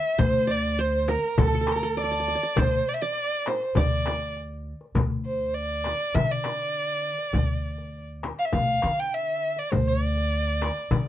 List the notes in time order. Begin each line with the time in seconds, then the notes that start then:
Already playing: C5 E5
0.18 D2 C5, frame drum, darbuka dum
0.47 D5
0.79 C5, darbuka ka
1.08 A#4, frame drum
1.24 darbuka ka
1.38 D2 A4, frame drum, darbuka dum
1.47 A4
1.55 A4
1.61 A4
1.67 A4, darbuka tek
1.72 A#4
1.76 A4
1.83 A4
1.97 D5
2.04 D5
2.11 D5
2.20 D5
2.28 D5
2.35 D5
2.43 D5
2.56 D2 C5, darbuka dum, frame drum
2.89 D5
2.94 E5
3.02 D5
3.46 C5, darbuka tek, frame drum
3.60 darbuka ka
3.75 D2 D5, darbuka dum, frame drum
3.91 darbuka ka
4.06 darbuka tek, frame drum
4.37 darbuka ka
4.81 darbuka ka
4.95 D2, darbuka dum, frame drum
5.26 C5
5.54 D5
5.84 darbuka tek, frame drum
6.15 D3 E5, darbuka dum, frame drum
6.30 D5, darbuka ka
6.44 darbuka tek, frame drum
7.18 darbuka ka
7.33 D2, darbuka dum, frame drum
7.78 darbuka ka
8.23 darbuka tek, frame drum
8.39 F5
8.45 E5
8.53 D2 F5, darbuka dum, frame drum
8.67 darbuka ka
8.82 D3, darbuka tek, frame drum
9.00 G5
9.14 E5
9.56 D5, darbuka ka
9.72 D2 C5, darbuka dum, frame drum
9.88 D5
10.17 darbuka ka
10.62 darbuka tek, frame drum
10.91 D3, darbuka dum, frame drum